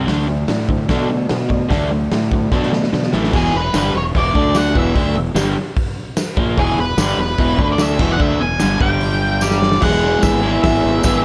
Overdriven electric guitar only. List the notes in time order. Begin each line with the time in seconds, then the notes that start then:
0.06 D3 A3 D4
0.27 D3 A3
0.49 D3 A3
0.70 D3 A3
0.89 D3 A3 D4
1.10 D3 A3
1.31 D3 A3
1.49 D3 A3
1.69 D3 A3 D4
1.91 D3 A3
2.13 D3 A3
2.33 D3 A3
2.52 D3 A3 D4
2.73 D3 A3
2.94 D3 A3
3.13 A2 E3 A3
3.32 E2 B2 E3
3.54 E2 B2
3.73 G2 D3 G3
3.95 E2 B2
4.15 E2 B2 E3
4.34 D3 A3 D4
4.75 E2 B2 E3
4.95 D3 A3 D4
5.16 E2 B2
5.35 G2 D3 G3
6.37 A#2 F3 A#3
6.57 E2 B2 E3
6.78 E2 B2
6.98 G2 D3 G3
7.18 E2 B2
7.39 E2 B2 E3
7.59 D3 A3 D4
7.99 E2 B2 E3
8.18 D3 A3 D4
8.40 E2 B2
8.60 G2 D3 G3
8.78 G2 D3 G3
9.81 E3 G#3 B3 E4
9.85 G#4
10.42 G#3 B3 E4 G#4
10.46 E3
11.04 E3 G#3 B3 E4
11.09 G#4